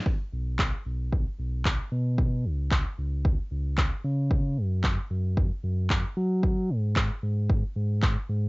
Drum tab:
CP |--x---x-|--x---x-|--x---x-|--x---x-|
BD |o-o-o-o-|o-o-o-o-|o-o-o-o-|o-o-o-o-|